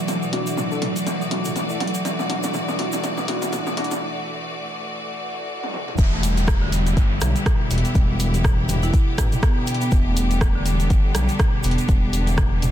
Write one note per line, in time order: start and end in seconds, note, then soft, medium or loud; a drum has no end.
0.00 5.95 E3 medium
0.00 5.94 A3 medium
0.00 5.94 F#4 medium
0.00 5.94 D5 medium
0.08 0.16 E3 medium
0.08 closed hi-hat medium
0.08 mid tom medium
0.08 shaker medium
0.22 0.32 B2 medium
0.22 shaker soft
0.33 0.68 D4 medium
0.33 0.46 D4 medium
0.33 0.68 E4 medium
0.33 0.68 F#4 medium
0.33 open hi-hat medium
0.33 mid tom medium
0.47 0.57 E3 medium
0.47 closed hi-hat soft
0.47 shaker medium
0.57 mid tom medium
0.57 shaker medium
0.71 0.79 D4 medium
0.71 0.79 E4 medium
0.71 0.79 A4 medium
0.71 shaker soft
0.82 0.95 F#3 medium
0.82 mid tom medium
0.82 open hi-hat medium
0.82 mid tom medium
0.96 1.05 E3 medium
0.96 closed hi-hat soft
0.96 shaker medium
1.07 1.14 E3 medium
1.07 closed hi-hat medium
1.07 mid tom medium
1.07 shaker medium
1.21 1.30 B2 medium
1.21 shaker soft
1.31 1.66 D4 medium
1.31 1.45 D4 medium
1.31 1.66 E4 medium
1.31 1.66 F#4 medium
1.31 open hi-hat medium
1.31 mid tom medium
1.45 1.55 E3 medium
1.45 closed hi-hat soft
1.45 mid tom medium
1.45 shaker medium
1.56 closed hi-hat medium
1.56 mid tom medium
1.56 shaker medium
1.69 1.77 D4 medium
1.69 1.77 E4 medium
1.69 1.77 A4 medium
1.69 shaker soft
1.80 1.93 F#3 loud
1.80 open hi-hat medium
1.80 mid tom medium
1.87 closed hi-hat medium
1.94 2.03 E3 medium
1.94 closed hi-hat soft
1.94 shaker medium
2.05 2.13 E3 medium
2.05 closed hi-hat medium
2.05 mid tom medium
2.05 shaker medium
2.19 2.29 B2 medium
2.19 mid tom medium
2.19 shaker soft
2.29 2.52 D4 medium
2.29 2.43 D4 medium
2.29 2.52 E4 medium
2.29 2.52 F#4 medium
2.29 open hi-hat medium
2.29 mid tom medium
2.43 2.53 E3 medium
2.43 closed hi-hat soft
2.43 mid tom medium
2.43 shaker medium
2.54 2.62 E3 medium
2.54 mid tom medium
2.54 shaker medium
2.68 2.78 B2 medium
2.68 mid tom medium
2.68 shaker soft
2.79 3.02 D4 medium
2.79 2.92 D4 medium
2.79 3.02 E4 medium
2.79 3.02 F#4 medium
2.79 open hi-hat medium
2.79 mid tom medium
2.92 3.02 E3 medium
2.92 closed hi-hat soft
2.92 mid tom medium
2.92 shaker medium
3.04 3.11 E3 medium
3.04 closed hi-hat medium
3.04 mid tom medium
3.04 shaker medium
3.17 3.27 B2 medium
3.17 mid tom medium
3.17 shaker soft
3.28 3.51 D4 medium
3.28 3.41 D4 medium
3.28 3.51 E4 medium
3.28 3.51 F#4 medium
3.28 open hi-hat medium
3.28 mid tom loud
3.42 3.51 E3 medium
3.42 closed hi-hat soft
3.42 mid tom medium
3.42 shaker medium
3.53 3.60 E3 medium
3.53 closed hi-hat medium
3.53 mid tom loud
3.53 shaker medium
3.67 3.76 B2 medium
3.67 mid tom medium
3.67 shaker soft
3.77 4.00 D4 medium
3.77 3.91 D4 medium
3.77 4.00 E4 medium
3.77 4.00 F#4 medium
3.77 open hi-hat medium
3.77 mid tom loud
3.84 closed hi-hat medium
3.91 4.00 E3 medium
3.91 closed hi-hat soft
3.91 mid tom medium
3.91 shaker medium
5.64 high tom medium
5.74 mid tom medium
5.88 mid tom medium
5.98 6.94 E1 loud
5.98 12.71 D3 medium
5.98 6.11 E3 medium
5.98 12.71 B3 medium
5.98 9.88 E4 medium
5.98 12.71 G4 medium
5.98 kick loud
5.98 closed hi-hat medium
5.98 downlifter medium
5.98 shaker soft
6.13 6.18 A3 medium
6.23 6.36 G3 medium
6.23 open hi-hat medium
6.23 shaker medium
6.37 closed hi-hat soft
6.37 shaker soft
6.47 kick loud
6.47 cross-stick loud
6.47 mid tom medium
6.47 shaker soft
6.62 6.71 D3 loud
6.72 6.85 G3 medium
6.72 open hi-hat medium
6.72 shaker medium
6.87 closed hi-hat soft
6.87 shaker soft
6.97 7.18 G1 loud
6.97 kick loud
6.97 closed hi-hat medium
6.97 shaker soft
7.21 7.33 B1 loud
7.21 7.34 G3 medium
7.21 cross-stick medium
7.21 open hi-hat loud
7.21 shaker loud
7.36 closed hi-hat soft
7.36 shaker medium
7.46 7.59 B2 medium
7.46 kick loud
7.46 cross-stick loud
7.46 closed hi-hat medium
7.46 mid tom medium
7.46 shaker soft
7.71 7.83 E1 medium
7.71 7.83 B3 medium
7.71 open hi-hat medium
7.71 shaker medium
7.78 closed hi-hat medium
7.85 closed hi-hat soft
7.85 shaker medium
7.95 8.91 E1 loud
7.95 8.08 G3 medium
7.95 kick loud
7.95 closed hi-hat medium
7.95 shaker soft
8.20 open hi-hat loud
8.20 shaker loud
8.34 8.43 E3 medium
8.34 closed hi-hat soft
8.34 shaker medium
8.44 8.57 B2 medium
8.44 kick loud
8.44 cross-stick loud
8.44 mid tom medium
8.44 shaker soft
8.69 mid tom medium
8.69 open hi-hat medium
8.69 shaker loud
8.83 8.92 E4 loud
8.83 closed hi-hat soft
8.83 shaker medium
8.94 kick loud
8.94 closed hi-hat medium
8.94 shaker soft
9.18 9.30 A1 medium
9.18 kick medium
9.18 cross-stick medium
9.18 open hi-hat loud
9.18 shaker loud
9.32 closed hi-hat soft
9.32 mid tom medium
9.32 shaker medium
9.43 9.55 B3 medium
9.43 kick loud
9.43 cross-stick loud
9.43 closed hi-hat medium
9.43 shaker soft
9.57 9.67 B2 medium
9.67 open hi-hat medium
9.67 shaker medium
9.74 closed hi-hat medium
9.81 9.91 B3 medium
9.81 closed hi-hat soft
9.81 shaker medium
9.91 10.88 E1 loud
9.91 10.05 E3 medium
9.91 12.71 D4 medium
9.91 kick loud
9.91 closed hi-hat medium
9.91 shaker soft
10.06 10.12 A3 medium
10.17 10.29 G3 medium
10.17 open hi-hat medium
10.17 shaker loud
10.31 closed hi-hat soft
10.31 shaker medium
10.41 kick loud
10.41 cross-stick loud
10.41 mid tom medium
10.41 shaker soft
10.55 10.65 D3 loud
10.66 10.78 G3 medium
10.66 open hi-hat medium
10.66 shaker medium
10.80 closed hi-hat soft
10.80 shaker medium
10.90 11.12 G1 medium
10.90 kick loud
10.90 closed hi-hat medium
10.90 shaker soft
11.15 11.27 B1 loud
11.15 11.28 G3 medium
11.15 cross-stick medium
11.15 open hi-hat loud
11.15 shaker loud
11.29 closed hi-hat soft
11.29 shaker medium
11.39 11.52 B2 medium
11.39 kick loud
11.39 cross-stick loud
11.39 closed hi-hat medium
11.39 mid tom medium
11.39 shaker soft
11.63 11.76 E1 medium
11.63 11.77 B3 medium
11.63 open hi-hat medium
11.63 shaker medium
11.71 closed hi-hat medium
11.78 closed hi-hat soft
11.78 shaker medium
11.88 12.71 E1 loud
11.88 12.01 G3 medium
11.88 kick loud
11.88 closed hi-hat medium
11.88 shaker soft
12.13 open hi-hat medium
12.13 shaker loud
12.27 12.37 E3 medium
12.27 closed hi-hat soft
12.27 shaker soft
12.38 12.50 B2 medium
12.38 kick loud
12.38 cross-stick loud
12.38 mid tom medium
12.38 shaker soft
12.62 mid tom medium
12.62 open hi-hat medium
12.62 shaker medium